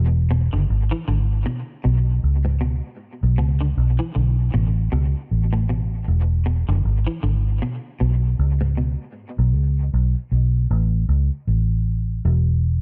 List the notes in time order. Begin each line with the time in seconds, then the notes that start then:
Already playing: E1
0.31 B2
0.53 F#1 D3
0.70 G#1
0.91 E3
1.08 G#1 D3
1.46 B2
1.84 B1 B2
2.24 C#2
2.45 G#2
2.61 B2
3.23 B1
3.38 C#2 B2
3.61 D3
3.77 B1
3.99 E3
4.15 B1 D3
4.54 A1 B2
4.92 C#2 B2
5.31 A1
5.53 A2
5.69 B2
6.08 E1
6.46 B2
6.68 F#1 D3
6.85 G#1
7.07 E3
7.23 G#1 D3
7.62 B2
8.00 B1 B2
8.39 C#2
8.61 G#2
8.77 B2
9.39 B1
9.55 C#2
9.94 B1
10.32 B1
10.71 A1
11.09 C#2
11.47 A1
12.25 E1